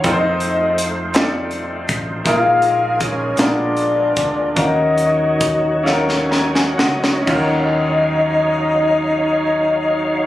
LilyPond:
<<
  \new Staff \with { instrumentName = "Horn section" } { \time 6/8 \key ees \minor \tempo 4. = 49 << { <ees' ees''>4 r2 | <f' f''>4 <des' des''>8 <d' d''>4. | <ees' ees''>2 r4 | <ees' ees''>2. | } \\ { <a' c''>4. r4. | aes'4. <f' aes'>4. | <ges' bes'>2 r4 | r2. | } >> }
  \new Staff \with { instrumentName = "Grand piano" } { \time 6/8 \key ees \minor <c' ees' f' a' bes' c''>4. <c' ees' f' g' a' d''>4. | <bes ees' f' aes' bes'>4. <ces' d' f' aes' bes'>4. | <des' ees' ges' bes' f''>4. <des' ees' ges' a' bes' f''>4. | <des' ees' f' ges' bes'>2. | }
  \new Staff \with { instrumentName = "Grand piano" } { \clef bass \time 6/8 \key ees \minor r2. | bes,4. bes,4. | ees4. r8 bes''16 aes''16 ges''8 | ees,2. | }
  \new Staff \with { instrumentName = "Tonewheel organ" } { \time 6/8 \key ees \minor << { r2. | r2. | r2 aes''16 ges''16 ees''8 | r2. | } \\ { <aes a ees' f' c''>2. | <aes ees' f' bes'>4. <aes ces' d' bes'>4. | <ges ees' ges' ces'' des''>2. | <ges ees' des'' f''>2. | } >> }
  \new Staff \with { instrumentName = "Fingered electric bass" } { \clef bass \time 6/8 \key ees \minor f,2~ f,8 a,,8 | bes,,4. bes,,4 d,8 | ees,2~ ees,8 des,8 | ees,2. | }
  \new DrumStaff \with { instrumentName = "Drums" } \drummode { \time 6/8 <hh bd>8 hh8 hh8 <hh sn>8 hh8 <hh bd>8 | <hh bd>8 hh8 <hh bd>8 <hh sn>8 hh8 <hh bd>8 | <hh bd>8 hh8 <hh bd>8 sn16 sn16 sn16 sn16 sn16 sn16 | <cymc bd>4. r4. | }
>>